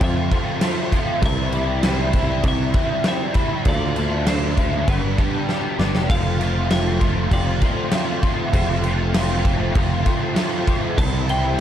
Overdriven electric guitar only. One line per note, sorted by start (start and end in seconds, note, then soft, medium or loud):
0.01 0.62 F2 loud
0.01 0.62 C3 medium
0.01 0.32 F3 loud
0.01 0.31 A3 medium
0.01 0.31 C4 loud
0.01 0.30 F4 loud
0.31 0.60 F3 medium
0.31 0.61 A3 medium
0.31 0.62 C4 medium
0.31 0.62 F4 medium
0.61 0.93 F3 medium
0.61 0.92 A3 medium
0.61 0.92 C4 medium
0.61 0.91 F4 medium
0.92 1.22 F3 medium
0.92 1.21 A3 medium
0.92 1.23 C4 medium
0.92 1.21 F4 medium
1.22 1.83 C3 loud
1.22 1.82 E3 medium
1.22 1.54 G3 loud
1.22 1.54 C4 loud
1.22 1.52 E4 loud
1.53 1.83 G3 medium
1.53 1.83 C4 medium
1.53 1.84 E4 medium
1.83 2.44 E3 medium
1.83 2.15 G3 loud
1.83 2.14 C4 medium
1.83 2.13 E4 medium
2.14 2.44 G3 medium
2.14 2.45 C4 medium
2.14 2.46 E4 medium
2.44 3.05 C3 loud
2.44 3.04 E3 loud
2.44 2.76 G3 loud
2.44 2.75 C4 loud
2.44 2.73 E4 loud
2.74 3.05 G3 medium
2.74 3.06 C4 medium
2.74 3.07 E4 medium
3.06 3.64 E3 medium
3.06 3.36 G3 medium
3.06 3.35 C4 medium
3.06 3.34 E4 medium
3.35 3.65 G3 medium
3.35 3.65 C4 medium
3.35 3.64 E4 medium
3.65 4.25 D3 medium
3.65 3.97 A3 loud
3.65 3.95 D4 loud
3.65 3.94 F4 loud
3.95 4.26 A3 medium
3.95 4.26 D4 medium
3.95 4.27 F4 medium
4.26 4.85 D3 medium
4.26 4.58 A3 medium
4.26 4.57 D4 medium
4.26 4.55 F4 medium
4.57 4.87 A3 medium
4.57 4.86 D4 medium
4.57 4.86 F4 medium
4.87 5.49 G2 medium
4.87 5.49 D3 loud
4.87 5.18 G3 loud
4.87 5.18 B3 medium
4.87 5.17 D4 loud
4.87 5.16 G4 loud
5.17 5.46 G3 medium
5.17 5.47 B3 medium
5.17 5.48 D4 medium
5.17 5.49 G4 medium
5.47 5.80 G3 medium
5.47 5.79 B3 medium
5.47 5.78 D4 medium
5.47 5.77 G4 medium
5.79 6.09 G3 soft
5.79 6.08 B3 medium
5.79 6.08 D4 medium
5.79 6.08 G4 medium
6.09 6.70 F3 loud
6.09 6.41 A3 loud
6.09 6.40 C4 loud
6.09 6.38 F4 loud
6.39 6.70 A3 medium
6.39 6.71 C4 medium
6.39 6.72 F4 medium
6.70 7.30 F3 medium
6.70 7.02 A3 medium
6.70 7.01 C4 medium
6.70 6.99 F4 medium
7.00 7.30 A3 medium
7.00 7.32 C4 medium
7.00 7.32 F4 medium
7.31 7.91 F3 medium
7.31 7.63 A3 medium
7.31 7.62 C4 loud
7.31 7.60 F4 loud
7.62 7.92 A3 medium
7.62 7.93 C4 medium
7.62 7.93 F4 medium
7.92 8.51 F3 medium
7.92 8.23 A3 medium
7.92 8.23 C4 medium
7.92 8.20 F4 medium
8.22 8.53 A3 medium
8.22 8.54 C4 medium
8.22 8.54 F4 medium
8.53 9.12 F3 loud
8.53 8.84 A3 loud
8.53 8.84 C4 loud
8.53 8.82 F4 loud
8.83 9.13 A3 medium
8.83 9.14 C4 medium
8.83 9.14 F4 medium
9.13 9.73 F3 medium
9.13 9.45 A3 medium
9.13 9.45 C4 medium
9.13 9.42 F4 medium
9.43 9.74 A3 medium
9.43 9.75 C4 medium
9.43 9.75 F4 medium
9.74 10.35 F3 loud
9.74 10.06 A3 loud
9.74 10.06 C4 loud
9.74 10.04 F4 loud
10.05 10.36 A3 medium
10.05 10.37 C4 medium
10.05 10.37 F4 medium
10.36 10.96 F3 loud
10.36 10.68 A3 medium
10.36 10.68 C4 medium
10.36 10.66 F4 loud
10.67 10.97 A3 medium
10.67 10.99 C4 medium
10.67 10.96 F4 medium
10.97 11.59 C3 loud
10.97 11.57 E3 loud
10.97 11.29 G3 loud
10.97 11.29 C4 loud
10.97 11.26 E4 loud
11.28 11.58 G3 medium
11.28 11.59 C4 medium
11.28 11.59 E4 medium